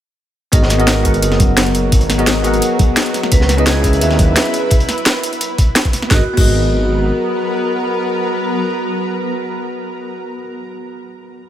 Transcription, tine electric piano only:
0.52 0.75 B3 loud
0.52 0.75 F#4 medium
0.52 0.76 G#4 medium
0.52 0.76 A#4 loud
0.52 0.76 D#5 loud
0.79 1.02 B3 medium
0.79 1.03 F#4 medium
0.79 1.03 G#4 medium
0.79 1.04 A#4 medium
0.79 1.04 D#5 loud
1.03 2.16 B3 medium
1.03 2.16 F#4 medium
1.03 2.17 G#4 medium
1.03 2.17 A#4 medium
1.08 2.18 F#5 loud
2.18 2.41 B3 medium
2.18 2.42 F#4 medium
2.18 2.43 G#4 medium
2.18 2.43 A#4 medium
2.18 2.43 D#5 medium
2.42 3.30 B3 medium
2.42 3.30 F#4 medium
2.42 3.31 G#4 medium
2.42 3.31 A#4 medium
2.47 3.32 F#5 loud
3.57 3.81 C#4 medium
3.57 3.82 E4 medium
3.57 3.82 G#4 medium
3.57 3.83 B4 medium
3.57 3.83 D#5 loud
3.82 4.88 C#4 medium
3.82 4.88 E4 medium
3.82 4.89 G#4 medium
3.82 4.89 B4 medium
3.87 4.90 E5 loud
6.07 6.19 B3 medium
6.07 6.20 F#4 medium
6.07 6.21 G#4 medium
6.13 6.22 A#4 medium
6.13 6.23 D#5 loud
6.34 10.34 B3 medium
6.34 10.35 F#4 medium
6.34 10.36 G#4 medium
6.39 10.37 A#4 medium
6.39 10.38 D#5 medium

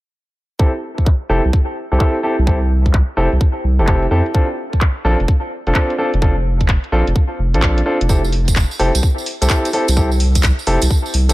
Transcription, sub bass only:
1.30 1.41 F1 loud
1.45 1.51 C2 medium
1.92 1.98 C2 medium
2.39 3.02 C2 medium
3.17 3.28 F1 loud
3.33 3.38 C2 medium
3.64 3.81 C2 medium
3.79 4.07 F1 medium
4.11 4.22 F2 medium
5.05 5.16 A#1 loud
5.20 5.26 F1 medium
5.67 5.73 F1 medium
6.14 6.77 F1 medium
6.92 7.03 A#1 medium
7.07 7.13 F1 medium
7.39 7.56 F1 medium
7.54 7.82 A#1 medium
8.01 8.64 F1 medium
8.80 8.91 F1 medium
8.95 9.01 C2 medium
9.42 9.48 C2 medium
9.88 10.52 C2 medium
10.67 10.78 F1 loud
10.82 10.88 C2 medium
11.14 11.31 C2 medium
11.29 11.33 F1 medium

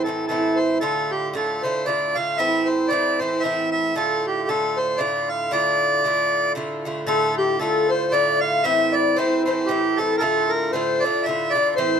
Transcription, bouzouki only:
0.06 0.28 A2 soft
0.06 0.29 E3 soft
0.06 0.30 C4 soft
0.06 0.30 E4 medium
0.29 0.80 A2 soft
0.29 0.82 E3 medium
0.29 0.82 C4 medium
0.29 0.82 E4 medium
0.81 1.32 A2 medium
0.81 1.33 D3 medium
0.81 1.35 A3 medium
0.81 1.35 F4 medium
1.34 1.62 A2 medium
1.34 1.63 D3 medium
1.34 1.64 A3 medium
1.34 1.65 F4 medium
1.63 1.85 A2 soft
1.63 1.86 D3 soft
1.63 1.87 A3 medium
1.63 1.88 F4 soft
1.86 2.14 A2 medium
1.86 2.15 D3 soft
1.86 2.16 A3 medium
1.86 2.16 F4 medium
2.16 2.38 A2 soft
2.16 2.39 D3 soft
2.16 2.39 A3 soft
2.16 2.39 F4 medium
2.39 2.89 A2 medium
2.39 2.90 E3 medium
2.39 2.91 C4 medium
2.39 2.91 E4 medium
2.90 3.19 A2 medium
2.90 3.20 E3 medium
2.90 3.20 C4 medium
2.90 3.21 E4 medium
3.20 3.42 A2 soft
3.20 3.43 E3 soft
3.20 3.43 C4 soft
3.20 3.44 E4 medium
3.43 3.94 A2 medium
3.43 3.95 E3 medium
3.43 3.96 C4 medium
3.43 3.96 E4 medium
3.96 4.48 A2 medium
3.96 4.49 D3 medium
3.96 4.50 A3 medium
3.96 4.50 F4 medium
4.49 4.97 A2 medium
4.49 4.99 D3 medium
4.49 5.00 A3 medium
4.49 5.00 F4 medium
4.98 5.50 A2 medium
4.98 5.52 D3 medium
4.98 5.53 A3 medium
4.98 5.53 F4 medium
5.51 6.03 A2 medium
5.51 6.05 D3 medium
5.51 6.06 A3 medium
5.51 6.07 F4 medium
6.04 6.54 A2 soft
6.04 6.55 D3 medium
6.04 6.57 A3 medium
6.04 6.57 F4 medium
6.55 6.84 A2 medium
6.55 6.85 D3 medium
6.55 6.85 A3 medium
6.55 6.86 F4 medium
6.85 7.05 A2 medium
6.85 7.06 D3 medium
6.85 7.07 A3 soft
6.85 7.07 F4 medium
7.07 7.58 A2 medium
7.07 7.59 D3 medium
7.07 7.61 A3 medium
7.07 7.61 F4 medium
7.59 8.11 A2 soft
7.59 8.11 D3 soft
7.59 8.13 A3 medium
7.59 8.13 F4 medium
8.12 8.63 A2 medium
8.12 8.64 D3 medium
8.12 8.65 A3 medium
8.12 8.65 F4 medium
8.64 9.15 A2 medium
8.64 9.17 E3 medium
8.64 9.18 C4 medium
8.64 9.18 E4 medium
9.16 9.45 A2 medium
9.16 9.46 E3 soft
9.16 9.46 C4 medium
9.16 9.47 E4 medium
9.46 9.67 A2 soft
9.46 9.68 E3 medium
9.46 9.69 C4 soft
9.46 9.70 E4 medium
9.69 9.97 A2 medium
9.69 9.98 E3 medium
9.69 9.98 C4 medium
9.69 10.00 E4 medium
9.98 10.19 A2 soft
9.98 10.21 E3 soft
9.98 10.21 C4 soft
9.98 10.22 E4 medium
10.21 10.72 A2 medium
10.21 10.73 D3 medium
10.21 10.75 A3 medium
10.21 10.75 F4 medium
10.73 11.03 A2 medium
10.73 11.03 D3 medium
10.73 11.04 A3 medium
10.73 11.05 F4 medium
11.04 11.25 A2 soft
11.04 11.26 D3 medium
11.04 11.27 A3 medium
11.04 11.28 F4 medium
11.26 11.54 A2 medium
11.26 11.54 D3 medium
11.26 11.55 A3 medium
11.26 11.56 F4 medium
11.55 11.77 A2 soft
11.55 11.78 D3 soft
11.55 11.79 A3 medium
11.55 11.79 F4 soft
11.78 12.00 A2 medium
11.78 12.00 E3 medium
11.78 12.00 C4 medium
11.78 12.00 E4 medium

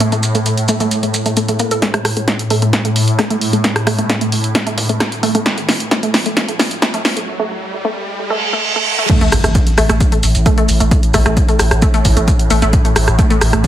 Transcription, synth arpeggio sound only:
0.00 0.07 A3 loud
0.12 0.15 A3 loud
0.35 0.39 A3 medium
0.69 0.75 A3 loud
0.80 0.83 A3 loud
1.03 1.07 A3 medium
1.26 1.32 A3 medium
1.37 1.43 A3 medium
1.49 1.53 A3 medium
1.60 1.64 A#3 medium
1.71 1.75 A4 medium
1.82 1.89 A3 loud
1.94 1.96 A3 loud
2.17 2.21 A3 medium
2.50 2.57 A3 loud
2.62 2.65 A3 loud
2.85 2.89 A3 medium
3.19 3.25 A3 loud
3.30 3.33 A3 loud
3.53 3.57 A3 medium
3.87 3.93 A3 loud
3.98 4.01 A3 loud
4.21 4.25 A3 medium
4.55 4.61 A3 loud
4.67 4.69 A3 loud
4.89 4.93 A3 medium
5.23 5.29 A3 loud
5.35 5.37 A3 loud
5.57 5.62 A3 medium
5.91 5.98 A3 medium
6.03 6.05 A3 medium
6.26 6.30 A3 medium
6.48 6.52 A3 medium
6.82 6.89 A3 medium
6.94 6.96 A3 medium
7.17 7.21 A3 medium
7.39 7.43 A3 medium
7.85 7.89 A3 medium
8.30 8.34 A3 medium
8.53 8.57 A3 medium
8.76 8.80 A3 medium
8.99 9.03 A3 medium
9.10 9.16 A3 loud
9.21 9.24 A3 loud
9.44 9.48 A3 medium
9.78 9.84 A3 loud
9.89 9.92 A3 loud
10.12 10.16 A3 medium
10.46 10.52 A3 loud
10.58 10.60 A3 loud
10.80 10.84 A3 medium
11.14 11.20 A3 loud
11.26 11.28 A3 loud
11.49 11.53 A3 medium
11.82 11.89 A3 loud
11.94 11.96 A3 loud
12.17 12.21 A3 medium
12.51 12.57 A3 loud
12.62 12.65 A3 loud
12.85 12.89 A3 medium
13.19 13.25 A3 loud
13.30 13.33 A3 loud
13.53 13.57 A3 medium

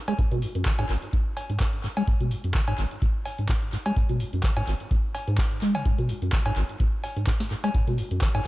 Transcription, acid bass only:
0.08 0.14 G#3 loud
0.18 0.26 G#2 medium
0.31 0.44 B2 loud
0.42 0.46 G#2 medium
0.55 0.64 F#2 medium
0.66 0.73 D#3 medium
0.79 0.85 G#2 loud
0.89 0.96 G#1 loud
1.13 1.17 G#2 medium
1.49 1.58 G#2 medium
1.60 1.64 G#2 loud
1.84 1.88 G#2 medium
1.97 2.03 G#3 loud
2.07 2.15 G#2 medium
2.20 2.33 B2 loud
2.31 2.35 G#2 medium
2.44 2.53 F#2 medium
2.55 2.62 D#3 medium
2.68 2.74 G#2 loud
2.78 2.85 G#1 loud
3.02 3.06 G#2 medium
3.39 3.47 G#2 medium
3.49 3.54 G#2 loud
3.73 3.77 G#2 medium
3.86 3.92 G#3 loud
3.96 4.04 G#2 medium
4.09 4.22 B2 loud
4.20 4.24 G#2 medium
4.33 4.42 F#2 medium
4.44 4.51 D#3 medium
4.57 4.63 G#2 loud
4.67 4.74 G#1 loud
4.91 4.95 G#2 medium
5.28 5.40 G#2 loud
5.38 5.42 G#3 loud
5.62 5.76 G#3 loud
5.75 5.84 C#3 medium
5.85 5.93 G#2 medium
5.98 6.11 B2 loud
6.09 6.13 G#2 medium
6.22 6.31 F#2 medium
6.33 6.40 D#3 medium
6.46 6.51 G#2 loud
6.56 6.63 G#1 loud
6.80 6.84 G#2 medium
7.16 7.25 G#2 medium
7.27 7.31 G#2 loud
7.51 7.55 G#2 medium
7.64 7.70 G#3 loud
7.74 7.82 G#2 medium
7.87 8.00 B2 loud
7.98 8.02 G#2 medium
8.11 8.20 F#2 medium
8.22 8.29 D#3 medium
8.34 8.40 G#2 loud

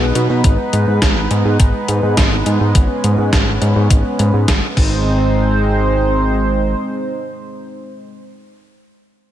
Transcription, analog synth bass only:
0.00 0.12 B1 medium
0.15 0.28 B2 medium
0.30 0.43 B2 medium
0.44 0.57 G#1 loud
0.73 0.86 G#2 medium
0.88 1.00 G#2 medium
1.02 1.27 G#1 medium
1.31 1.44 G#2 medium
1.45 1.58 G#2 medium
1.60 1.72 G#1 loud
1.88 2.01 G#2 medium
2.03 2.16 G#2 medium
2.17 2.43 G#1 medium
2.46 2.59 G#2 medium
2.61 2.73 G#2 medium
2.75 2.88 G#1 loud
3.04 3.17 G#2 medium
3.18 3.31 G#2 medium
3.33 3.58 G#1 medium
3.61 3.74 G#2 medium
3.76 3.89 G#2 medium
3.90 4.03 G#1 medium
4.19 4.32 G#2 medium
4.34 4.46 G#2 medium
4.48 4.61 G#1 medium
4.77 6.75 G#1 medium

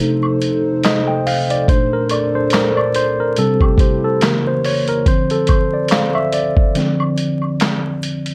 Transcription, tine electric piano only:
0.00 1.65 C3 medium
0.00 1.65 A3 medium
0.00 1.65 D#4 medium
0.85 1.08 D#5 medium
1.08 1.16 G5 medium
1.27 1.51 F5 loud
1.51 1.69 D5 medium
1.69 3.34 A#2 medium
1.69 3.34 A3 medium
1.69 3.34 D4 medium
1.69 1.93 C5 loud
1.93 2.12 A#4 loud
2.12 2.35 D5 medium
2.35 2.54 C5 medium
2.54 2.78 A#4 medium
2.77 2.85 D5 medium
2.96 3.20 C5 loud
3.20 3.38 A#4 medium
3.38 3.96 C3 medium
3.38 3.96 G3 medium
3.38 3.96 C4 medium
3.38 3.62 A4 medium
3.62 3.81 G4 medium
3.80 4.04 C5 medium
4.04 4.23 A4 medium
4.21 4.80 C#3 medium
4.21 4.80 E3 medium
4.21 4.80 A#3 medium
4.21 4.46 A#4 medium
4.47 4.63 C5 medium
4.65 4.87 C#5 medium
4.89 5.07 A#4 medium
5.07 5.65 D3 medium
5.07 5.65 F3 medium
5.07 5.65 C4 medium
5.07 5.31 C5 loud
5.31 5.50 A4 medium
5.50 5.74 C5 medium
5.74 5.92 D5 medium
5.92 6.16 F5 medium
6.15 6.32 E5 medium
6.34 7.56 D5 medium
6.75 7.98 D3 medium
6.75 7.98 F3 medium
6.75 7.99 C4 medium

